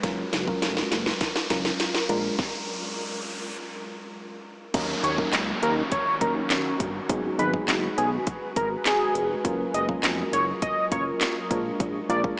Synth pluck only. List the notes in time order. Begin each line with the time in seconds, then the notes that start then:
0.03 F#3 C#4 F4 A#4
0.47 F#3 C#4 F4 A#4
1.50 F#3 C#4 F4 A#4
2.09 G#3 D4 F4 A#4
4.74 F#3 A#3 C#4 D#4 A#4
5.18 F#3 A#3 C#4 D#4 A#4
6.21 F#3 A#3 C#4 D#4 A#4
7.09 F#3 G#3 B3 D#4 G#4
7.39 F#3 G#3 B3 D#4 G#4
7.53 F#3 G#3 B3 D#4 G#4
9.44 F#3 A#3 C#4 F4 A#4
9.89 F#3 A#3 C#4 F4 A#4
10.91 F#3 A#3 C#4 F4 A#4
11.50 G#3 A#3 D4 F4 A#4
12.09 G#3 A#3 D4 F4 A#4
12.24 G#3 A#3 D4 F4 A#4